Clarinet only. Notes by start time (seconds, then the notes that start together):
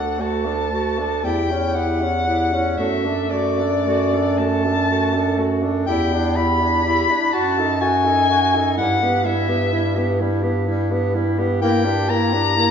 Already playing: A4
0.19 F#4
0.45 A4
0.73 F#4
0.99 A4
1.25 G4
1.51 E4
1.75 G4
2.02 E4
2.28 G4
2.52 E4
2.78 F#4
3.05 A4
3.32 F#4
3.59 A4
3.88 F#4
4.14 A4
4.39 F#4
4.65 A4
4.90 F#4
5.14 A4
5.38 F#4
5.63 A4
5.87 G4
6.12 E4
6.36 G4
6.60 E4
6.84 G4
7.08 E4
7.33 F#4
7.58 A4
7.81 F#4
8.04 A4
8.29 F#4
8.54 A4
8.76 E4
9.01 G4
9.24 E4
9.49 G4
9.71 E4
9.95 G4
10.19 E4
10.42 G4
10.66 E4
10.91 G4
11.14 E4
11.38 G4
11.62 E4
11.86 G4
12.09 E4
12.33 G4
12.56 E4